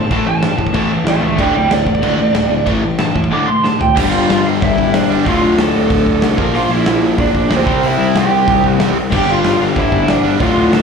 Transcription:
Already playing: lead electric guitar A5
0.11 picked electric bass A1, distorted electric guitar A2 E3 A3, lead electric guitar A5, kick, crash
0.26 picked electric bass A1, distorted electric guitar A2 E3, lead electric guitar A5
0.41 picked electric bass G2, distorted electric guitar A2 E3, snare, crash
0.58 picked electric bass A2, distorted electric guitar A2 E3, kick
0.67 kick
0.74 picked electric bass A1, distorted electric guitar A2 E3 A3, kick, crash
0.91 distorted electric guitar A2 E3
1.04 picked electric bass A1, distorted electric guitar A2 E3, lead electric guitar E5, snare, crash
1.09 lead electric guitar A5
1.21 picked electric bass C#2, distorted electric guitar A2 E3, lead electric guitar E5 A5
1.38 picked electric bass D1, distorted electric guitar D2 A2 D3, lead electric guitar D5 G5, kick, crash
1.54 picked electric bass D1, distorted electric guitar D2 A2, lead electric guitar D5 G5
1.69 picked electric bass D1, distorted electric guitar D2 A2, lead electric guitar D5, snare, crash
1.86 picked electric bass A1, distorted electric guitar D2 A2, kick
1.95 kick
2.02 picked electric bass C#2, distorted electric guitar D2 A2 D3, kick, crash
2.17 picked electric bass A1, distorted electric guitar D2 A2
2.33 picked electric bass D1, distorted electric guitar D2 A2, snare, crash
2.50 picked electric bass D1, distorted electric guitar D2 A2
2.66 picked electric bass A1, distorted electric guitar A2 E3 A3, kick, crash
2.82 picked electric bass A1, distorted electric guitar A2 E3
2.99 picked electric bass G2, distorted electric guitar A2 E3, lead electric guitar A5, snare, crash
3.15 distorted electric guitar A2 E3, picked electric bass A2, kick
3.24 kick
3.31 distorted electric guitar D2 A2 D3, lead electric guitar D6
3.47 distorted electric guitar D2 A2, lead electric guitar C6
3.63 distorted electric guitar D2 A2, lead electric guitar A5, snare
3.79 distorted electric guitar D2 A2, lead electric guitar G5, floor tom
3.96 picked electric bass G1, distorted electric guitar G2 D3 G3, lead electric guitar G4 G5, kick, crash
4.11 picked electric bass G1, lead electric guitar F4 F5
4.29 picked electric bass G1, snare, open hi-hat
4.45 picked electric bass G1
4.62 picked electric bass G1, lead electric guitar E4 E5, kick, open hi-hat
4.78 picked electric bass G1, kick
4.94 picked electric bass A#1, lead electric guitar D4 D5, snare, open hi-hat
5.09 picked electric bass G1, distorted electric guitar G2 D3 G3
5.24 picked electric bass D1, distorted electric guitar D2 A2 D3, lead electric guitar F4 F5, kick, open hi-hat
5.43 picked electric bass D1
5.58 picked electric bass D1, lead electric guitar A4 A5, snare, open hi-hat
5.75 picked electric bass D1
5.90 picked electric bass D1, kick, open hi-hat
6.06 picked electric bass D1, kick
6.22 picked electric bass C2, snare, open hi-hat
6.37 picked electric bass A#1, distorted electric guitar A#2 F3 A#3, kick
6.53 picked electric bass A#1, lead electric guitar F4 F5, open hi-hat
6.69 picked electric bass A#1, lead electric guitar E4 E5
6.86 picked electric bass A#1, snare, open hi-hat
7.01 picked electric bass A#1
7.18 picked electric bass A#1, lead electric guitar D4 D5, kick, open hi-hat
7.34 picked electric bass A#1, kick
7.49 picked electric bass D2, distorted electric guitar A#2 F3 A#3, lead electric guitar C4, snare, open hi-hat
7.55 lead electric guitar C5
7.65 picked electric bass C2, distorted electric guitar C3 G3 C4, kick
7.83 picked electric bass C2, lead electric guitar E4, open hi-hat
7.88 lead electric guitar E5
7.99 picked electric bass C2
8.15 picked electric bass C2, lead electric guitar G4 G5, snare, open hi-hat
8.31 picked electric bass C2
8.48 picked electric bass C2, kick, open hi-hat
8.64 picked electric bass C2, kick
8.73 lead electric guitar F5
8.78 picked electric bass E2, distorted electric guitar C3 G3 C4, snare, open hi-hat
8.93 picked electric bass C2
9.11 picked electric bass G1, distorted electric guitar G2 D3 G3, lead electric guitar G4, kick, crash
9.16 lead electric guitar G5
9.27 picked electric bass G1, lead electric guitar F4
9.31 lead electric guitar F5
9.43 picked electric bass G1, snare, open hi-hat
9.59 picked electric bass G1
9.76 picked electric bass G1, lead electric guitar E4, kick, open hi-hat
9.80 lead electric guitar E5
9.92 picked electric bass G1, kick
10.07 picked electric bass A#1, lead electric guitar D4 D5, snare, open hi-hat
10.23 picked electric bass G1, distorted electric guitar G2 D3 G3
10.39 picked electric bass D1, distorted electric guitar D2 A2 D3, lead electric guitar F4 F5, kick, open hi-hat
10.55 picked electric bass D1
10.72 picked electric bass D1, lead electric guitar A4 A5, snare, open hi-hat

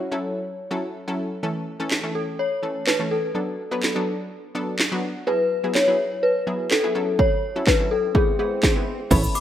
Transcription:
Already playing: synth bell C#5
0.12 synth pluck F#3 C#4 E4 A4
0.71 synth pluck F#3 C#4 E4 A4
1.08 synth pluck F#3 C#4 E4 A4
1.43 synth pluck E3 A3 C#4 A4
1.80 synth pluck E3 A3 C#4 A4
1.91 snare, clap
2.03 synth pluck E3 A3 C#4 A4
2.15 synth bell A4
2.39 synth bell C#5
2.63 synth pluck E3 A3 C#4 A4
2.87 synth bell B4, snare, clap
2.99 synth pluck E3 A3 C#4 A4
3.11 synth bell A4
3.35 synth pluck F#3 B3 D4 A4
3.71 synth pluck F#3 B3 D4 B4
3.83 snare, clap
3.95 synth pluck F#3 B3 D4 A4
4.55 synth pluck F#3 B3 D4 A4
4.79 snare, clap
4.92 synth pluck F#3 B3 D4 F#4
5.27 synth pluck F#3 B3 E4 G#4, synth bell B4, swell
5.64 synth pluck F#3 B3 E4 G#4
5.75 synth bell C#5, snare, clap
5.87 synth pluck F#3 B3 E4 G#4
6.23 synth bell B4
6.47 synth pluck F#3 B3 E4 G#4
6.71 synth bell A4, snare, clap
6.83 synth pluck F#3 B3 E4 G#4
6.95 synth pluck F#3 C#4 E4 A4
7.19 synth bell C#5, kick
7.56 synth pluck F#3 C#4 E4 A4
7.67 synth bell B4, kick, snare, clap
7.80 synth pluck F#3 C#4 E4 A4
7.91 synth bell A4
8.15 synth pluck G#3 B3 E4 B4, synth bell G#4, kick
8.39 synth pluck G#3 B3 E4 B4, synth bell G#4
8.63 synth bell G#4, kick, snare, clap
8.76 synth pluck G#3 B3 E4 B4
9.11 fm bass A1, ambient pad B2 A3 C#4, synth pluck B3 C#4 E4 A4 C#5, clean electric guitar E4 B4 C#5, synth bell B5, kick, closed hi-hat, crash, shaker
9.24 muted clean electric guitar stroke, shaker
9.35 synth bell D6, muted clean electric guitar stroke, open hi-hat, shaker

